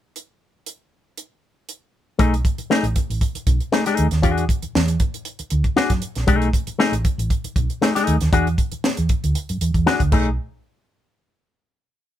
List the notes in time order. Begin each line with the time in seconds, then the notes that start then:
0.16 closed hi-hat
0.66 closed hi-hat
1.17 closed hi-hat
1.69 closed hi-hat
2.19 B1 A3 D#4 G#4, kick, closed hi-hat
2.34 closed hi-hat
2.45 kick, closed hi-hat
2.58 muted fingered electric bass stroke, closed hi-hat
2.70 A3 D#4 G#4, snare
2.83 A1, closed hi-hat
2.96 kick, closed hi-hat
3.10 A1, closed hi-hat
3.21 kick, closed hi-hat
3.35 muted fingered electric bass stroke, closed hi-hat
3.47 B1, kick, closed hi-hat
3.60 closed hi-hat
3.72 A3 D#4 G#4, snare
3.86 A3 D#4 G#4, snare, closed hi-hat
3.97 D#2, closed hi-hat
4.11 D#2, snare, closed hi-hat
4.22 E2 D4 F#4 G#4, kick, closed hi-hat
4.38 closed hi-hat
4.49 kick, closed hi-hat
4.62 muted fingered electric bass stroke, closed hi-hat
4.75 E2, snare
4.88 closed hi-hat
5.00 kick, closed hi-hat
5.14 closed hi-hat
5.25 closed hi-hat
5.39 muted fingered electric bass stroke, closed hi-hat
5.50 D2, closed hi-hat
5.64 kick, closed hi-hat
5.76 D4 F#4 G#4, muted fingered electric bass stroke, snare
5.90 F#2, kick, snare, closed hi-hat
6.02 closed hi-hat
6.15 A#1, snare, closed hi-hat
6.27 B1 A3 D#4 G#4, kick, closed hi-hat
6.42 closed hi-hat
6.53 kick, closed hi-hat
6.67 muted fingered electric bass stroke, closed hi-hat
6.79 A3 D#4 G#4, snare
6.92 A1, closed hi-hat
7.05 kick, closed hi-hat
7.18 A1, closed hi-hat
7.30 kick, closed hi-hat
7.44 muted fingered electric bass stroke, closed hi-hat
7.56 B1, kick, closed hi-hat
7.70 closed hi-hat
7.82 A3 D#4 G#4, snare
7.95 A3 D#4 G#4, snare, closed hi-hat
8.07 D#2, closed hi-hat
8.21 D#2, snare, closed hi-hat
8.33 E2 D4 F#4 G#4, kick, closed hi-hat
8.47 closed hi-hat
8.58 kick, closed hi-hat
8.72 muted fingered electric bass stroke, closed hi-hat
8.84 snare
8.97 E2, closed hi-hat
9.09 kick, closed hi-hat
9.24 D2, closed hi-hat
9.35 closed hi-hat
9.49 F#2, closed hi-hat
9.61 E2, closed hi-hat
9.74 E2, kick, closed hi-hat
9.86 D4 F#4 G#4, snare
10.00 D2, kick, closed hi-hat
10.12 B1 A3 D#4 G#4, kick, crash